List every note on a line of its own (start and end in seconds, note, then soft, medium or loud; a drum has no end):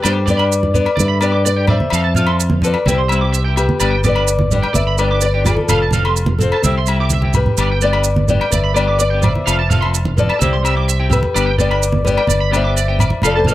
0.02 0.86 G2 medium
0.02 0.17 B3 medium
0.02 0.18 D4 medium
0.02 0.18 G4 medium
0.02 0.26 G4 medium
0.02 0.27 C5 medium
0.02 0.12 D5 medium
0.02 low agogo medium
0.02 maracas medium
0.13 muted clean electric guitar stroke medium
0.26 0.38 B3 medium
0.26 0.39 D4 medium
0.26 0.38 G4 medium
0.26 0.72 B4 medium
0.26 0.35 D5 medium
0.26 low conga medium
0.26 maracas medium
0.30 0.72 D5 loud
0.37 0.53 D4 soft
0.37 0.53 G4 soft
0.37 0.46 B5 medium
0.37 low agogo medium
0.52 maracas medium
0.63 high conga medium
0.74 0.88 B3 medium
0.74 0.89 D4 medium
0.74 0.96 B4 medium
0.74 0.97 D5 medium
0.74 low conga medium
0.74 maracas medium
0.85 muted clean electric guitar stroke medium
0.85 low agogo medium
0.96 1.81 G2 medium
0.96 1.20 B4 medium
0.96 1.05 D5 medium
0.96 high conga medium
0.96 maracas medium
1.00 1.21 E5 medium
1.08 1.17 B5 medium
1.21 1.33 B3 medium
1.21 1.34 D4 medium
1.21 1.32 G4 medium
1.21 1.43 B4 medium
1.21 1.30 D5 medium
1.21 1.44 D5 medium
1.21 low agogo medium
1.21 maracas medium
1.32 1.48 D4 soft
1.32 1.47 G4 medium
1.32 1.41 D6 medium
1.45 1.67 B4 medium
1.45 1.54 D5 medium
1.45 1.70 D5 loud
1.45 maracas medium
1.56 1.72 D4 soft
1.56 1.71 G4 soft
1.56 1.65 G5 medium
1.67 2.59 C5 medium
1.67 1.77 D5 medium
1.67 2.59 E5 loud
1.67 low conga medium
1.67 low agogo medium
1.80 high conga medium
1.90 2.74 F2 medium
1.90 2.06 F3 medium
1.90 2.06 C4 medium
1.90 2.07 F4 medium
1.90 2.07 A4 medium
1.90 2.00 F5 medium
1.90 low agogo medium
1.90 maracas medium
2.04 2.13 A5 medium
2.15 2.28 F3 medium
2.15 2.28 C4 medium
2.15 2.27 F4 medium
2.15 2.26 A4 medium
2.15 2.25 F5 medium
2.15 low conga medium
2.15 maracas medium
2.27 2.42 C4 soft
2.27 2.42 F4 soft
2.27 2.41 A4 medium
2.27 2.36 C6 medium
2.27 low agogo medium
2.40 maracas medium
2.50 high conga medium
2.62 2.77 F3 medium
2.62 2.77 C4 medium
2.62 2.77 F4 medium
2.62 2.78 A4 medium
2.62 2.86 B4 medium
2.62 low conga medium
2.62 maracas medium
2.66 2.87 D5 medium
2.74 muted clean electric guitar stroke medium
2.74 low agogo medium
2.86 3.68 C2 medium
2.86 3.00 G3 medium
2.86 3.01 C4 medium
2.86 3.01 E4 medium
2.86 3.01 G4 medium
2.86 3.54 G4 medium
2.86 3.39 C5 medium
2.86 2.95 E5 medium
2.86 high conga medium
2.86 maracas medium
2.98 3.07 C6 medium
3.08 3.22 G3 medium
3.08 3.22 C4 medium
3.08 3.23 E4 medium
3.08 3.18 E5 medium
3.08 low agogo medium
3.08 maracas medium
3.21 3.37 C4 soft
3.21 3.37 E4 soft
3.21 3.36 G4 soft
3.21 3.30 D6 medium
3.32 3.42 E5 medium
3.32 maracas medium
3.39 3.58 B4 medium
3.44 3.60 E4 soft
3.44 3.60 G4 soft
3.44 3.53 G5 medium
3.56 4.01 G4 medium
3.56 4.05 B4 medium
3.56 3.65 E5 medium
3.56 low agogo medium
3.56 maracas medium
3.69 high conga medium
3.80 4.63 G1 medium
3.80 3.94 G3 medium
3.80 3.95 B3 medium
3.80 3.95 D4 medium
3.80 3.95 G4 medium
3.80 3.89 D5 medium
3.80 low agogo medium
3.80 maracas medium
3.90 4.00 G5 medium
4.04 4.16 G3 medium
4.04 4.16 B3 medium
4.04 4.15 D4 medium
4.04 4.14 G4 medium
4.04 4.49 B4 medium
4.04 4.13 D5 medium
4.04 low conga medium
4.04 maracas medium
4.08 4.54 D5 medium
4.15 4.31 B3 soft
4.15 4.30 D4 soft
4.15 4.30 G4 soft
4.15 4.24 B5 medium
4.15 low agogo medium
4.28 maracas loud
4.39 high conga medium
4.51 4.66 G3 medium
4.51 4.67 D4 medium
4.51 4.67 G4 medium
4.51 4.72 B4 medium
4.51 4.75 D5 medium
4.51 muted clean electric guitar stroke medium
4.51 low conga medium
4.51 maracas medium
4.62 4.71 G5 medium
4.62 low agogo medium
4.73 5.57 G1 medium
4.73 4.96 B4 medium
4.73 4.83 D5 medium
4.73 4.97 E5 medium
4.73 high conga medium
4.73 maracas medium
4.87 4.96 B5 medium
4.98 5.11 G3 medium
4.98 5.10 B3 medium
4.98 5.11 D4 medium
4.98 5.10 G4 medium
4.98 5.20 B4 medium
4.98 5.07 D5 medium
4.98 5.24 D5 medium
4.98 low agogo medium
4.98 maracas medium
5.11 5.26 B3 soft
5.11 5.25 D4 soft
5.11 5.25 G4 soft
5.11 5.19 D6 medium
5.21 5.44 B4 medium
5.21 5.31 D5 medium
5.21 5.45 D5 medium
5.21 maracas medium
5.34 5.49 B3 soft
5.34 5.49 D4 soft
5.34 5.48 G4 medium
5.34 5.43 G5 medium
5.44 6.35 F4 medium
5.44 6.11 A4 medium
5.44 5.55 D5 medium
5.44 low conga medium
5.44 low agogo medium
5.44 maracas medium
5.57 high conga medium
5.68 6.52 F1 medium
5.68 5.83 F3 medium
5.68 5.83 C4 medium
5.68 5.83 F4 medium
5.68 5.84 A4 medium
5.68 5.78 F5 medium
5.68 low conga medium
5.68 low agogo medium
5.68 maracas loud
5.82 5.90 A5 medium
5.91 6.05 F3 medium
5.91 6.05 C4 medium
5.91 6.05 F4 medium
5.91 6.06 A4 medium
5.91 6.02 F5 medium
5.91 high conga medium
5.91 low conga medium
5.91 maracas medium
6.05 6.19 C4 soft
6.05 6.19 F4 soft
6.05 6.14 C6 medium
6.05 low agogo medium
6.11 6.37 G4 medium
6.17 maracas medium
6.26 high conga medium
6.38 6.54 C4 medium
6.38 6.55 F4 medium
6.38 6.61 A4 medium
6.38 muted clean electric guitar stroke medium
6.38 low conga medium
6.38 maracas medium
6.43 6.61 C5 medium
6.52 6.61 A5 medium
6.52 low agogo medium
6.62 7.46 C2 medium
6.62 6.78 G3 medium
6.62 6.78 C4 medium
6.62 6.78 E4 medium
6.62 6.79 G4 medium
6.62 7.30 C5 medium
6.62 6.73 E5 medium
6.62 7.37 E5 medium
6.62 high conga medium
6.62 maracas medium
6.78 6.86 C6 medium
6.86 6.99 G3 medium
6.86 6.99 C4 medium
6.86 6.99 E4 medium
6.86 6.98 G4 medium
6.86 6.97 E5 medium
6.86 low agogo medium
6.86 maracas medium
6.99 7.14 C4 soft
6.99 7.14 E4 soft
6.99 7.13 G4 soft
6.99 7.09 D6 medium
7.10 7.21 E5 medium
7.10 high conga medium
7.10 maracas medium
7.22 7.37 C4 soft
7.22 7.37 E4 soft
7.22 7.36 G4 medium
7.22 7.33 G5 medium
7.22 high conga medium
7.33 7.78 G4 medium
7.33 7.79 B4 medium
7.33 low conga medium
7.33 low agogo medium
7.33 maracas medium
7.46 low conga medium
7.57 8.40 G1 medium
7.57 7.72 G3 medium
7.57 7.72 B3 medium
7.57 7.72 D4 medium
7.57 7.72 G4 medium
7.57 7.68 D5 medium
7.57 low agogo medium
7.57 maracas loud
7.72 7.80 G5 medium
7.81 7.93 G3 medium
7.81 7.94 B3 medium
7.81 7.93 D4 medium
7.81 7.92 G4 medium
7.81 8.25 B4 medium
7.81 7.91 D5 medium
7.81 8.27 D5 medium
7.81 maracas medium
7.93 8.08 B3 soft
7.93 8.08 D4 soft
7.93 8.07 G4 medium
7.93 8.02 B5 medium
7.93 low agogo medium
8.04 maracas loud
8.16 high conga medium
8.28 8.43 G3 medium
8.28 8.43 B3 medium
8.28 8.44 D4 medium
8.28 8.44 G4 medium
8.28 8.49 B4 medium
8.28 8.52 D5 medium
8.28 low conga medium
8.28 maracas medium
8.41 8.49 G5 medium
8.41 low agogo medium
8.51 9.34 G1 medium
8.51 8.73 B4 medium
8.51 8.61 D5 medium
8.51 8.75 E5 medium
8.51 high conga medium
8.51 maracas medium
8.64 8.73 B5 medium
8.74 8.87 G3 medium
8.74 8.88 B3 medium
8.74 8.87 D4 medium
8.74 8.86 G4 medium
8.74 8.97 B4 medium
8.74 8.84 D5 medium
8.74 9.00 D5 medium
8.74 low agogo medium
8.74 maracas medium
8.88 9.03 B3 soft
8.88 9.02 D4 soft
8.88 9.02 G4 soft
8.88 8.96 D6 medium
8.99 9.21 B4 medium
8.99 9.08 D5 medium
8.99 9.22 D5 medium
8.99 maracas loud
9.10 9.27 B3 soft
9.10 9.26 D4 soft
9.10 9.25 G4 medium
9.10 9.19 G5 medium
9.22 10.13 C5 medium
9.22 9.32 D5 medium
9.22 10.14 E5 medium
9.22 low conga medium
9.22 low agogo medium
9.22 maracas medium
9.35 high conga medium
9.46 10.29 F1 medium
9.46 9.61 F3 medium
9.46 9.61 C4 medium
9.46 9.61 F4 medium
9.46 9.61 A4 medium
9.46 9.55 F5 medium
9.46 low agogo medium
9.46 maracas medium
9.59 9.67 A5 medium
9.70 9.82 F3 medium
9.70 9.83 C4 soft
9.70 9.83 F4 medium
9.70 9.82 A4 medium
9.70 9.79 F5 medium
9.70 low conga medium
9.70 maracas medium
9.81 9.97 F4 soft
9.81 9.97 A4 medium
9.81 9.90 C6 medium
9.81 low agogo medium
9.85 9.98 C4 soft
9.94 maracas medium
10.05 high conga medium
10.17 10.32 F3 medium
10.17 10.32 C4 medium
10.17 10.33 F4 medium
10.17 10.33 A4 medium
10.17 10.39 B4 medium
10.17 10.40 D5 medium
10.17 low conga medium
10.17 maracas medium
10.29 10.38 A5 medium
10.29 low agogo medium
10.39 11.23 C2 medium
10.39 10.55 G3 medium
10.39 10.56 C4 medium
10.39 10.56 E4 medium
10.39 11.07 G4 medium
10.39 10.56 G4 medium
10.39 11.12 C5 medium
10.39 10.49 E5 medium
10.39 high conga medium
10.39 maracas medium
10.53 10.62 C6 medium
10.63 10.76 G3 medium
10.63 10.75 C4 medium
10.63 10.74 G4 medium
10.63 10.74 E5 medium
10.63 muted clean electric guitar stroke medium
10.63 low agogo medium
10.63 maracas medium
10.75 10.91 C4 soft
10.75 10.90 E4 soft
10.75 10.90 G4 soft
10.75 10.86 D6 medium
10.88 10.97 E5 medium
10.88 maracas medium
10.99 11.14 C4 soft
10.99 11.14 E4 soft
10.99 11.14 G4 soft
10.99 11.09 G5 medium
11.10 11.54 G4 medium
11.10 11.56 B4 medium
11.10 11.20 E5 medium
11.10 low conga medium
11.10 low agogo medium
11.10 maracas medium
11.23 high conga medium
11.34 12.18 G1 medium
11.34 11.49 G3 medium
11.34 11.50 B3 medium
11.34 11.50 D4 medium
11.34 11.50 G4 medium
11.34 11.44 D5 medium
11.34 low agogo medium
11.34 maracas medium
11.46 11.55 G5 medium
11.58 11.71 G3 medium
11.58 11.71 B3 medium
11.58 11.70 D4 medium
11.58 11.69 G4 medium
11.58 12.03 B4 medium
11.58 11.67 D5 medium
11.58 12.04 D5 medium
11.58 low conga medium
11.58 maracas medium
11.71 11.85 D4 soft
11.71 11.85 G4 soft
11.71 11.79 B5 medium
11.71 low agogo medium
11.83 maracas medium
11.92 high conga medium
12.04 12.20 G3 medium
12.04 12.20 B3 medium
12.04 12.21 D4 medium
12.04 12.21 G4 medium
12.04 12.49 B4 medium
12.04 12.55 D5 medium
12.04 low conga medium
12.04 maracas medium
12.17 12.26 G5 medium
12.17 low agogo medium
12.27 13.12 G1 medium
12.27 12.38 D5 medium
12.27 high conga medium
12.27 maracas medium
12.40 12.50 B5 medium
12.51 12.64 G3 medium
12.51 12.64 B3 medium
12.51 12.64 D4 medium
12.51 12.62 G4 medium
12.51 13.21 C5 medium
12.51 12.62 D5 medium
12.51 low agogo medium
12.51 maracas medium
12.56 13.21 E5 medium
12.64 12.80 B3 soft
12.64 12.79 D4 soft
12.64 12.78 G4 medium
12.64 12.73 D6 medium
12.77 12.86 D5 medium
12.77 maracas medium
12.88 13.03 B3 soft
12.88 13.03 D4 soft
12.88 13.03 G4 soft
12.88 12.97 G5 medium
12.99 13.09 D5 medium
12.99 low conga medium
12.99 low agogo medium
12.99 maracas medium
13.10 high conga medium
13.22 13.54 F1 medium
13.22 13.38 F3 medium
13.22 13.38 C4 medium
13.22 13.38 F4 medium
13.22 13.38 A4 medium
13.22 13.36 A4 medium
13.22 13.33 F5 medium
13.22 low conga medium
13.22 low agogo medium
13.22 maracas medium
13.26 13.36 D5 medium
13.35 13.47 A4 medium
13.35 13.49 C5 medium
13.35 13.44 A5 medium
13.45 13.54 F3 medium
13.45 13.54 C4 medium
13.45 13.54 F4 medium
13.45 13.54 F5 medium
13.45 high conga medium
13.45 low conga medium
13.45 maracas medium
13.49 13.54 A4 medium
13.49 13.54 B4 medium